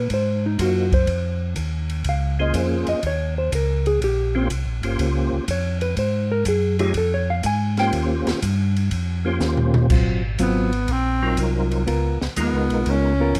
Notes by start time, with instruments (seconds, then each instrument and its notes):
Already playing: hollow-body jazz guitar B4
0.10 tonewheel organ G#2, hollow-body jazz guitar C5, kick, ride
0.46 hollow-body jazz guitar D#4
0.58 tonewheel organ F#2 A#3 D#4 F4 F#4 C5, hollow-body jazz guitar F#4, kick, hi-hat pedal, ride
0.92 hollow-body jazz guitar C5, kick, ride
1.07 tonewheel organ F2, kick, ride
1.56 tonewheel organ D#2, kick, hi-hat pedal, ride
1.90 ride
2.04 tonewheel organ C#2, kick, ride
2.09 hollow-body jazz guitar F5
2.39 tonewheel organ A#3 C#4 F4 G#4 C5, hollow-body jazz guitar D#5
2.54 tonewheel organ F2, hollow-body jazz guitar C5, kick, hi-hat pedal, ride
2.87 tonewheel organ F2, hollow-body jazz guitar D#5, ride
3.03 tonewheel organ D#2, hollow-body jazz guitar C#5, kick, ride
3.38 hollow-body jazz guitar C5
3.52 tonewheel organ C#2, hollow-body jazz guitar A#4, kick, hi-hat pedal, ride
3.86 hollow-body jazz guitar G#4, ride
4.01 tonewheel organ A#1, hollow-body jazz guitar G4, kick, ride
4.35 tonewheel organ A#3 C#4 F4 G4 C5, hollow-body jazz guitar C4
4.50 tonewheel organ C2, kick, hi-hat pedal, ride
4.65 tonewheel organ A#1
4.82 tonewheel organ G1 A#3 C#4 F4 G4 C5, ride
4.99 tonewheel organ C#2, kick, ride
5.33 tonewheel organ C#2
5.48 tonewheel organ F2, hollow-body jazz guitar C#5, kick, hi-hat pedal, ride
5.81 hollow-body jazz guitar B4, ride
5.97 tonewheel organ G#2, hollow-body jazz guitar C5, kick, ride
6.32 hollow-body jazz guitar A#4
6.45 tonewheel organ F#2, hollow-body jazz guitar G#4, kick, hi-hat pedal, ride
6.79 tonewheel organ A3 D#4 F4 G#4 C#5, hollow-body jazz guitar G4, ride
6.94 tonewheel organ F2, hollow-body jazz guitar A4, kick, ride
7.14 hollow-body jazz guitar C#5
7.30 hollow-body jazz guitar F5
7.43 tonewheel organ G#2, hollow-body jazz guitar G#5, kick, hi-hat pedal, ride
7.77 tonewheel organ A#3 C#4 F4 G4 C5, hollow-body jazz guitar G5, snare, ride
7.93 tonewheel organ D#2, kick, ride
8.26 tonewheel organ D#2, snare, ride
8.42 tonewheel organ G2, kick, hi-hat pedal, ride
8.77 ride
8.91 tonewheel organ F2, kick, ride
9.25 tonewheel organ A#3 C#4 F4 G4 C5
9.40 tonewheel organ D#2, snare, hi-hat pedal
9.57 floor tom
9.74 floor tom
9.90 tonewheel organ G#1, hollow-body jazz guitar F#3 C4 F4, kick, crash
10.39 tonewheel organ G#1, hollow-body jazz guitar F#3 C4 F4, tenor saxophone B3, kick, hi-hat pedal, ride
10.73 ride
10.88 tonewheel organ A#1, tenor saxophone C4, kick, ride
11.22 tonewheel organ F#3 C4 D#4 F4 A#4
11.37 tonewheel organ C2, kick, hi-hat pedal, ride
11.71 ride
11.87 tonewheel organ C#2, hollow-body jazz guitar B3 F4 A#4, kick, ride
12.21 tonewheel organ C#2, snare
12.36 tonewheel organ D#2 G#3 B3 D#4 F4 A#4, kick, hi-hat pedal, ride
12.41 tenor saxophone B3
12.53 tonewheel organ C#2
12.69 tonewheel organ B1, ride
12.86 tonewheel organ C#2, tenor saxophone C#4, kick, ride
13.20 hollow-body jazz guitar B3 F4 A#4
13.35 tonewheel organ F2, kick, hi-hat pedal, ride